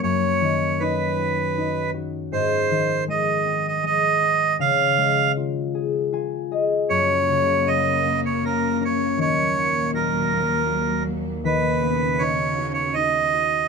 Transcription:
<<
  \new Staff \with { instrumentName = "Accordion" } { \time 3/4 \key b \lydian \tempo 4 = 79 cis''4 b'4. r8 | bis'4 dis''8. dis''16 dis''4 | eis''4 r2 | cis''4 dis''8. cis''16 ais'8 cis''8 |
cis''4 ais'4. r8 | b'4 cis''8. cis''16 dis''4 | }
  \new Staff \with { instrumentName = "Harp" } { \time 3/4 \key b \lydian fis,8 dis8 dis'8 fis'8 dis'8 fis'8 | gis,8 dis8 gis8 bis8 gis8 bis8 | cis8 gis8 eis'8 gis'8 <eis' gis''>8 <gis' dis''>8 | fis,8 cis8 ais8 cis'8 ais8 cis'8 |
dis8 ais8 fis'8 ais8 fis'8 ais8 | dis8 b8 dis'8 fis'8 dis'8 fis'8 | }
  \new Staff \with { instrumentName = "String section" } { \clef bass \time 3/4 \key b \lydian << { r2. | r2. | r2. | <cis ais>2. |
<ais, fis>2. | <b, cis>2. | } \\ { r2. | r2. | r2. | fis,2. |
dis,2.~ | dis,2. | } >> }
>>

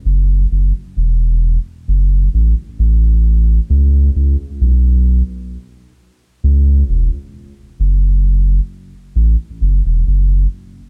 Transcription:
\new Staff \with { instrumentName = "Sub bass" } { \clef bass \time 4/4 \key cis \phrygian \tempo 4 = 66 fis,,8 fis,,16 r16 e,,8. r16 fis,,8 a,,16 r16 a,,4 | cis,8 cis,16 r16 b,,8. r4 r16 cis,8 e,,16 r16 | r8 fis,,4 r8 a,,16 r16 fis,,16 e,,16 fis,,8 r8 | }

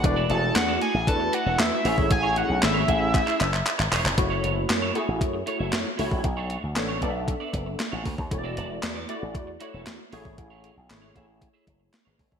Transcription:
<<
  \new Staff \with { instrumentName = "Analog synth lead" } { \time 4/4 \key a \major \tempo 4 = 116 d''8 a''8 fis''8 gis''8 a''8 fis''8 e''4 | gis''8 fis''8 e''2~ e''8 r8 | r1 | r1 |
r1 | r1 | }
  \new Staff \with { instrumentName = "Clean electric guitar" } { \time 4/4 \key a \major r16 <fis' a' d''>16 <fis' a' d''>16 r8 <fis' a' d''>16 <fis' a' d''>16 r8. <fis' a' d''>16 <fis' a' e''>16 r8 <e' gis' cis''>8 | r16 <e' gis' cis''>16 <e' gis' cis''>16 r8 <e' gis' cis''>16 <e' gis' e''>16 r8 <e' gis' e''>8 r8. <e' gis' cis''>8 | r16 <e' a' cis''>16 <e' a' cis''>16 r8 <e' a' cis''>16 <e' a' cis''>16 r8. <e' a' cis''>16 <e' a' e''>16 r8 <e' a' cis''>8 | r16 <d' a' cis''>16 <d' a' cis''>16 r8 <d' a' cis''>16 <d' a' d''>16 r8 <d' a' d''>8 r8 <d' a' cis''>8 r16 |
r16 <fis' a' d''>16 <fis' a' d''>16 r8 <fis' a' d''>16 <fis' a' d''>16 r8. <fis' a' d''>16 <fis' a' e''>16 r8 <e' gis' cis''>8 | r16 <e' gis' cis''>16 <e' gis' cis''>16 r8 <e' gis' cis''>16 <e' gis' e''>16 r8 <e' gis' e''>8 r8 <e' gis' cis''>8 r16 | }
  \new Staff \with { instrumentName = "Tine electric piano" } { \time 4/4 \key a \major <a d' e' fis' b'>8 <a d' e' fis' gis'>4 r8 <a d' e' fis' b'>4. <a cis' e' gis' c'' cis''>8~ | <a cis' e' gis' c'' cis''>8 <a cis' e' gis' cis''>8 <a cis' e' gis' e''>4. r4. | <a e' fis' cis''>4 r8 <a e' fis' gis'>4 <a e' fis' cis''>4 <a e' fis' cis''>8 | r4 <b d' a' cis''>8 <b d' a' d'' e''>4. r4 |
<a e' fis' cis'' d''>4 r8 <a e' fis' d''>4 <a e' fis' cis''>4 <a e' gis' cis''>8~ | <a e' gis' cis''>8 r8 <a e' gis' cis''>8 <a e' gis' cis''>4. r16 <gis' b'>16 <a' cis''>16 <cis'' e''>16 | }
  \new Staff \with { instrumentName = "Slap bass" } { \clef bass \time 4/4 \key a \major e,,8 e,,8 e,8 r16 a,,16 e,8 r16 e,,16 e,16 r16 a,,16 gis,,16 | a,,8. b,,16 gis,,8 a,,8. r16 fis,,8 r16 gis,,16 e,,16 eis,,16 | fis,,8 fis,,8 fis,8 r16 a,,16 fis,8 r16 fis,,16 fis,16 r16 cis,16 ais,,16 | b,,8. d,16 a,,8 b,,8. r16 fis,,8 r16 a,,16 d,16 dis,16 |
e,,8 e,,8 e,8 r16 a,,16 e,8 r16 e,,16 e,16 r16 a,,16 gis,,16 | a,,8. b,,16 gis,,8 a,,8. r16 fis,,8 r16 gis,,16 g,,16 gis,,16 | }
  \new DrumStaff \with { instrumentName = "Drums" } \drummode { \time 4/4 <hh bd>8 hh8 <hc hh sn>8 hh8 <hh bd>8 hh8 <hc hh sn>8 hho16 bd16 | <hh bd>8 hh8 <hc hh sn>8 <hh bd>8 <hc hh bd>16 hc16 <hc hh>16 hc16 <hc hh>16 hc16 <hc hho>16 hc16 | <hh bd>8 hh8 <hc hh sn>8 hh8 <hh bd>8 hh8 <hc hh sn>8 hho16 bd16 | <hh bd>8 hh8 <hc hh sn>8 <hh bd>8 <hh bd>8 <hh bd>8 <hc hh sn>8 <hho bd>16 bd16 |
<hh bd>8 hh8 <hc hh sn>8 hh8 <hh bd>8 hh8 <hc hh sn>8 hho16 bd16 | <hh bd>8 hh8 <hc hh sn>8 <hh bd>8 <hh bd>8 <hh bd>8 <hc hh sn>8 <hho bd>16 bd16 | }
>>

